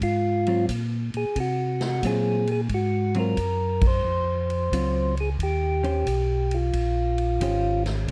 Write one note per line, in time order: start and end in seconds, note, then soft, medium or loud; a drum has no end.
0.01 0.67 G#2 medium
0.01 0.66 F4 loud
0.01 kick soft
0.01 ride medium
0.47 0.68 F#3 soft
0.47 0.68 C4 medium
0.47 0.68 F4 medium
0.47 ride soft
0.69 1.11 A#2 medium
0.69 kick soft
0.69 hi-hat pedal soft
0.69 ride medium
1.14 1.25 A#2 soft
1.14 1.39 G#4 medium
1.14 ride soft
1.36 2.01 C3 medium
1.36 kick soft
1.36 ride medium
1.40 1.84 F#4 medium
1.81 snare medium
1.81 ride soft
1.86 2.05 F#4 medium
2.02 2.68 A#2 medium
2.02 2.44 F#3 soft
2.02 2.44 C4 medium
2.02 2.45 F4 medium
2.02 kick soft
2.02 hi-hat pedal soft
2.02 ride medium
2.07 2.51 G#4 medium
2.47 ride soft
2.52 2.61 G#4 medium
2.69 3.35 G#2 medium
2.69 kick soft
2.69 ride soft
2.74 3.18 F#4 medium
3.14 3.36 F#3 medium
3.14 3.36 C4 medium
3.14 3.36 F4 medium
3.14 ride soft
3.19 3.87 A#4 medium
3.36 4.02 F#2 medium
3.36 kick soft
3.36 hi-hat pedal soft
3.36 ride medium
3.81 kick medium
3.81 ride medium
3.87 5.15 C5 loud
4.05 4.70 F2 medium
4.50 ride soft
4.72 5.37 C#2 medium
4.72 5.13 F#3 soft
4.72 5.13 C4 medium
4.72 5.13 F4 medium
4.72 kick soft
4.72 hi-hat pedal soft
4.72 ride medium
5.17 5.30 G#4 medium
5.17 ride soft
5.39 6.04 D#2 medium
5.39 6.56 G4 medium
5.39 kick soft
5.39 ride medium
5.83 6.04 D#3 medium
5.83 6.04 C#4 medium
5.83 6.05 G4 medium
5.83 6.05 C5 medium
5.83 ride soft
6.06 6.72 B1 medium
6.06 kick soft
6.06 hi-hat pedal soft
6.06 ride medium
6.51 7.83 F4 medium
6.51 ride soft
6.73 7.39 A#1 medium
6.73 kick soft
6.73 ride medium
7.18 ride soft
7.40 8.06 G#1 medium
7.40 8.08 D#3 soft
7.40 8.08 C#4 medium
7.40 8.09 G4 medium
7.40 8.09 C5 medium
7.40 kick soft
7.40 hi-hat pedal soft
7.40 ride medium
7.86 snare soft
7.86 ride soft
8.08 kick soft